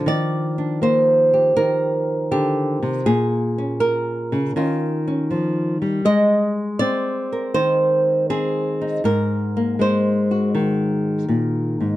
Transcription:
Already playing: F3
0.06 D#3 D5
0.58 D4
0.82 A#3 C5
1.34 G4
1.56 D#3 A#4
2.31 D3 G4
2.83 C3
3.06 A#2 G#4
3.58 C#4
3.80 A#4
4.32 C#3
4.56 D#3 C#4 F4
5.08 C#4
5.31 F3
5.82 G3
6.05 G#3 D#5
6.79 C4 D5
7.32 A#4
7.54 D#3 C5
8.30 C4 G#4
8.81 D#4
9.04 G#2 A#4
9.57 A#3
9.79 G#3 C5
10.31 F#4
10.55 D#3
11.29 A#2
11.81 G#2

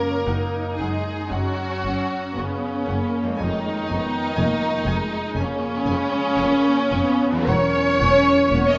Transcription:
Already playing: F#2 F#3 A#3 C#4 A#4 C#5
0.27 F#1 F#2 D#4 F#5
0.78 F#1 F#2 G#3 G#4 F#5
1.31 F#1 F#2 F#3 C#4 F#4 F#5
1.82 F#1 F#2 F#5
2.35 F#1 F#2 C#3 B3 C#4 F#5
2.87 F#1 F#2 A#3 F#5
3.23 F2
3.27 G#3
3.32 C#4
3.36 G#3 D#4 C#5 G#5
3.41 F1 F2 D#3
3.87 F1 F2 B3 G#5
4.36 F1 F2 A#3 G#5
4.86 F1 F2 G#3 G#5
5.36 F1 F2 C#3 A#3 C#4 G#5
5.85 F1 F2 G#3 G#5
6.37 F1 F2 A#3 G#5
6.91 F1 F2 B3 G#5
7.32 E2
7.36 F#3
7.40 F#4
7.45 E1 A#4 C#5 F#5
7.49 E2 C#4
8.00 E1 E2 F#5
8.52 E1 E2 A#3 F#5
8.68 D#5

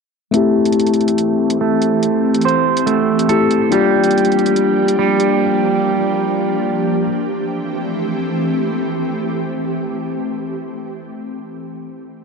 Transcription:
0.31 E3 A3 C4 E4 G4, closed hi-hat
0.36 G4
0.65 closed hi-hat
0.72 closed hi-hat
0.80 closed hi-hat
0.87 closed hi-hat
0.94 closed hi-hat
1.01 closed hi-hat
1.08 closed hi-hat
1.18 closed hi-hat
1.50 closed hi-hat
1.61 A3
1.82 closed hi-hat
2.03 closed hi-hat
2.35 closed hi-hat
2.42 C5, closed hi-hat
2.49 closed hi-hat
2.77 closed hi-hat
2.86 A3, closed hi-hat
3.19 closed hi-hat
3.28 A3 C4 E4 G4 A4, closed hi-hat
3.51 closed hi-hat
3.69 F3 G3 A#3 D4 F4, closed hi-hat
3.74 G4
4.03 closed hi-hat
4.11 closed hi-hat
4.18 closed hi-hat
4.25 closed hi-hat
4.32 closed hi-hat
4.39 closed hi-hat
4.46 closed hi-hat
4.56 closed hi-hat
4.88 closed hi-hat
4.99 G3
5.20 closed hi-hat
7.10 E3 A3 C4 G4

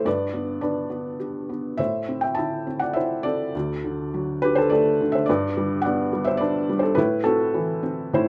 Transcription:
0.05 G2 B4 D5
0.33 B3
0.61 D4 B4 D5
0.90 B3
1.20 G4
1.49 B3
1.78 A2 C5 E5
2.08 C4
2.21 E5 G5
2.35 E5 A5
2.39 E4
2.67 C4
2.80 D5 F#5
2.93 E4 C5 E5
3.23 C4 A4 D5
3.55 D2
3.84 D3
4.14 F#3
4.42 D3 G4 B4
4.55 A4 C5
4.70 A3 A4 D5
5.01 D3
5.12 C5 E5
5.26 G2 B4 D5
5.57 G3
5.82 D5 F#5
5.86 B3
6.13 G3
6.24 C5 E5
6.37 D4 B4 D5
6.69 G3
6.79 A4 C5
6.95 A2 E4 B4
7.24 C4 F#4 A4
7.54 E3
7.83 C4
8.13 A2 E4 C5

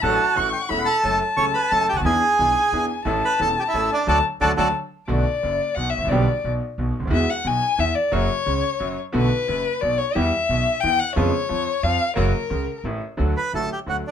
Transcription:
0.02 A1 A2 F#3 A3 D4 A4 F#5 A5
0.06 F#4
0.35 A1 A2 E3 A3 C#4 A4 C#6
0.52 G5
0.60 F#5
0.69 E1 E2 E3 A3 C#4 A4 E5 B5
0.78 F#5
0.85 A4 A5
1.02 F#1 F#2 F#3 A3 C#4 A4 A5
1.36 C#2 C#3 F#3 A3 C#4 A4 C#5 C#6
1.54 B4 B5
1.71 F#1 F#2 F#3 A3 C#4 A4 A5
1.89 C#2 G4 G5
1.93 C#2 D2 F#5
1.98 D2 D#2 F#4
2.05 E2 E3 B3 D4 G#4 G#5
2.39 B1 B2 E3 B3 D4 G#4
2.72 E2 E3 B3 D4 G#4
3.05 A1 A2 E3 A3 C#4 A4 A5
3.25 B4 B5
3.39 E1 E2 E3 A3 C#4 A4 A5
3.59 G4 G5
3.68 E4 E5
3.73 A1 A2 E3 A3 C#4 A4
3.92 D4 D5
4.07 D2 D3 F#3 A3 F#4 A4 D5 A5
4.41 D2 D3 F#3 A3 F#4 A4 D5 A5
4.57 D2 D3 F#3 A3 F#4 A4 D5 A5
5.08 B1 B2 D3 A3 B3 F#4 D5
5.43 F#1 F#2
5.75 B1 B2 F#5
5.90 E5
5.97 G#1
6.02 A1
6.07 A#1 D5
6.11 B1 B2 D3 G3 B3 G4
6.44 B1 B2
6.78 B1 B2
7.00 C#2 D2
7.05 D2 D#2
7.10 E2 E3 G#3 B3 F#4 E5
7.30 F#5
7.45 B1 B2 G#5
7.78 E2 E3 E5
7.95 D5
8.12 F#1 F#2 C#3 F#3 A#3 F#4 C#5
8.46 C#2 C#3
8.80 F#1 F#2 F#3
9.12 B1 B2 D3 A3 B3 F#4 B4
9.48 F#1 F#2
9.81 B1 B2 D5
9.98 C#5
10.14 E2 E3 G3 B3 G4 E5
10.49 B1 B2
10.81 E2 E3 G5
10.99 F#5
11.16 F2 C#3 F3 G#3 B3 F4 C#5
11.49 F2 F3
11.83 F2 F3 F5
12.16 F#1 F#2 C#3 F#3 A#3 F#4 A#4
12.50 C#2 C#3
12.84 A1 A2
13.17 D2 D3 F#3 A3 F#4
13.37 B4 B5
13.53 A1 A2 D3 F#3 A3 F#4 A4 A5
13.72 G4 G5
13.86 D2 D3 F#3 A3 F#4 F#5
14.07 D4

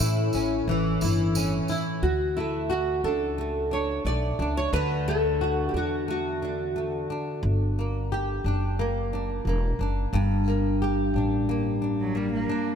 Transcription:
Already playing: A2 E3 C#4
0.00 A2 E4
0.33 A1 C#4, tambourine
0.68 A1 E3
1.01 G1 E4, tambourine
1.35 C#4, tambourine
1.68 E4, tambourine
2.02 D2 F#4
2.37 A3 E4
2.70 F#4
3.04 C#2 D4 A4
3.38 A3
3.71 D4 C#5
4.05 B1 A3 D5
4.39 C#2 D4
4.57 C#5
4.73 D2 D3 B4
5.08 A3 A4
5.41 F#4
5.69 G4
5.74 E2 D4 F#4
6.08 A3 F#4
6.42 D4
6.76 A3
7.10 D4
7.43 G1
7.79 A#3
8.12 G4
8.44 F#1 D4
8.79 A#3
9.13 D4
9.45 E1 A#3
9.79 F#1 D4
10.13 G1 G2
10.48 A#3
10.82 G4
11.14 A1 D4
11.49 A#3
11.82 D4
12.00 F#3
12.15 G3 A#3
12.33 A#3
12.49 D4

